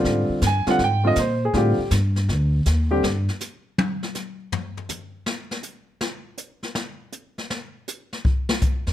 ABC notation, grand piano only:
X:1
M:4/4
L:1/8
Q:"Swing" 1/4=161
K:Ablyd
V:1 name="Grand piano"
z2 a _g =g e c A | G2 z6 | z8 | z8 |
z8 | z8 |]
V:2 name="Grand piano"
[D,G,CF]2 z [D,G,CF] z [D,G,CF] z2 | [D,G,CF] z6 [D,G,CG] | z8 | z8 |
z8 | z8 |]